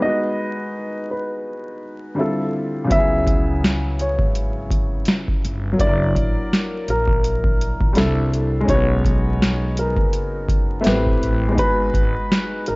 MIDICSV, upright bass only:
0, 0, Header, 1, 2, 480
1, 0, Start_track
1, 0, Tempo, 722892
1, 8, Time_signature, 4, 2, 24, 8
1, 8470, End_track
2, 0, Start_track
2, 0, Title_t, "Upright bass"
2, 0, Program_c, 0, 32
2, 1933, Note_on_c, 0, 37, 90
2, 2761, Note_off_c, 0, 37, 0
2, 2782, Note_on_c, 0, 32, 78
2, 3340, Note_off_c, 0, 32, 0
2, 3617, Note_on_c, 0, 31, 84
2, 3840, Note_off_c, 0, 31, 0
2, 3852, Note_on_c, 0, 30, 108
2, 4077, Note_off_c, 0, 30, 0
2, 4091, Note_on_c, 0, 33, 92
2, 4219, Note_off_c, 0, 33, 0
2, 4568, Note_on_c, 0, 34, 90
2, 5158, Note_off_c, 0, 34, 0
2, 5186, Note_on_c, 0, 34, 83
2, 5283, Note_off_c, 0, 34, 0
2, 5290, Note_on_c, 0, 36, 102
2, 5743, Note_off_c, 0, 36, 0
2, 5769, Note_on_c, 0, 35, 105
2, 6599, Note_off_c, 0, 35, 0
2, 7213, Note_on_c, 0, 33, 98
2, 7438, Note_off_c, 0, 33, 0
2, 7457, Note_on_c, 0, 33, 96
2, 7680, Note_off_c, 0, 33, 0
2, 7934, Note_on_c, 0, 32, 76
2, 8061, Note_off_c, 0, 32, 0
2, 8421, Note_on_c, 0, 32, 83
2, 8470, Note_off_c, 0, 32, 0
2, 8470, End_track
0, 0, End_of_file